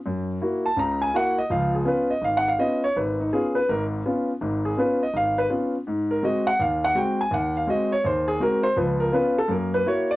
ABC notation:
X:1
M:4/4
L:1/8
Q:"Swing" 1/4=165
K:Dbmix
V:1 name="Grand piano"
z3 =a b _a g e | f A c e (3f g f e d | c E A c B z3 | z A c e f c z2 |
z B e g f g =g a | g f e d =c A B c | c B c =A B c d =d |]
V:2 name="Grand piano"
G,,2 [B,_FG] z [D,,D,]2 [B,FG] z | [D,,F,]2 [CDF] z A,,,2 [CDF] z | A,,,2 [CDF] z [A,,,A,,]2 [CDF] z | [A,,,A,,]2 [CDF] z A,,,2 [CDF] z |
A,,2 [A,=CG] z E,,2 [A,CG] z | E,,2 [A,=CG] z E,,2 [A,CG] z | [D,,F,]2 [CDF] z [G,,B,]2 [B,_FG] z |]